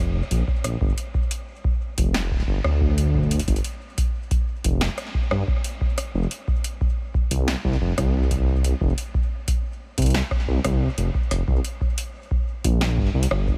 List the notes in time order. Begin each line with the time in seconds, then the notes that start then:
Already playing: F1
0.31 A#1, closed hi-hat
0.48 kick
0.64 A#1, cross-stick, closed hi-hat
0.81 G1, kick
0.98 closed hi-hat
1.14 kick
1.31 closed hi-hat
1.64 kick
1.98 F1, kick, closed hi-hat
2.14 snare
2.31 D1, kick
2.48 G1
2.64 D2, cross-stick
2.81 kick
2.98 closed hi-hat
3.14 kick
3.19 kick
3.23 kick
3.27 kick
3.31 kick, closed hi-hat
3.35 kick
3.39 kick, closed hi-hat
3.44 kick
3.48 G1, kick, closed hi-hat
3.56 closed hi-hat
3.64 closed hi-hat
3.98 kick, closed hi-hat
4.31 kick, closed hi-hat
4.64 F1, kick, closed hi-hat
4.81 snare
4.98 cross-stick, closed hi-hat
5.14 kick
5.31 G2, cross-stick
5.48 kick
5.64 closed hi-hat
5.81 kick
5.98 cross-stick, closed hi-hat
6.14 F1
6.31 closed hi-hat
6.48 kick
6.64 closed hi-hat
6.81 kick
7.14 kick
7.31 C2, closed hi-hat
7.48 snare
7.64 C2, kick
7.81 F1
7.98 C2, kick, cross-stick, closed hi-hat
8.31 kick, closed hi-hat
8.64 closed hi-hat
8.81 F1, kick
8.98 closed hi-hat
9.14 kick
9.48 kick, closed hi-hat
9.98 C2, kick, closed hi-hat
10.02 closed hi-hat
10.06 closed hi-hat
10.10 closed hi-hat
10.14 snare
10.31 kick, cross-stick
10.48 C2
10.64 C2, kick, cross-stick, closed hi-hat
10.98 F1, closed hi-hat
11.14 kick
11.31 F1, cross-stick, closed hi-hat
11.48 C2, kick
11.64 closed hi-hat
11.81 kick
11.98 closed hi-hat
12.31 kick
12.64 A#1, kick, closed hi-hat
12.81 snare
12.98 G1, kick
13.14 C2
13.23 closed hi-hat
13.31 G1, cross-stick
13.48 kick